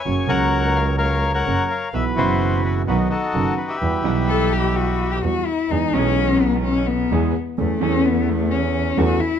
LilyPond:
<<
  \new Staff \with { instrumentName = "Bandoneon" } { \time 4/4 \key e \minor \tempo 4 = 128 << { gis''8 fis''4 f''8 f''8. fis''8. f''8 | e''8 c''4 b'8 b'8 a'4 b'16 e''16~ | e''2. r4 | \key e \major r1 |
r1 | } \\ { cis''8 <ais' cis''>4. <ais' cis''>8. <ais' cis''>4~ <ais' cis''>16 | b'8 <e' fis'>4. <dis' fis'>8 <dis' fis'>4~ <dis' fis'>16 <g' b'>16~ | <g' b'>2. r4 | r1 |
r1 | } >> }
  \new Staff \with { instrumentName = "Cello" } { \time 4/4 \key e \minor r1 | r1 | r4 a'8 g'8 fis'8. g'16 fis'8 e'8 | \key e \major dis'8 cis'4 b8 cis'8 b4 r8 |
a8 cis'8 b8 a8 cis'4 fis'8 e'8 | }
  \new Staff \with { instrumentName = "Grand piano" } { \clef bass \time 4/4 \key e \minor <fis, cis fis ais fis'>8 <cis, cis fis ais fis'>2~ <cis, cis fis ais fis'>8 <fis, cis fis ais fis'>8 r8 | <b,, b, e fis b fis'>8 <fis,, fis, b, e fis fis'>4. <b,, b, dis fis b fis'>8 r8 <fis,, fis, dis fis b fis'>8 r8 | <e, e g b fis'>8 <b,, b, e g b fis''>2~ <b,, b, e g b fis''>8 <e, e g b fis'>8 r8 | \key e \major <e, e gis b gis'>8 <b,, b, e gis b gis'>2~ <b,, b, e gis b gis'>8 <e, e gis b gis'>8 r8 |
<e, e a cis' a'>8 <e, e a cis' a'>2~ <e, e a cis' a'>8 <e, e a cis' a'>8 r8 | }
  \new Staff \with { instrumentName = "Double bass" } { \clef bass \time 4/4 \key e \minor fis,,8 cis,2~ cis,8 fis,,8 r8 | b,,8 fis,,4. b,,8 r8 fis,,8 r8 | e,8 b,,2~ b,,8 e,8 r8 | \key e \major e,8 b,,2~ b,,8 e,8 r8 |
e,8 e,2~ e,8 e,8 r8 | }
>>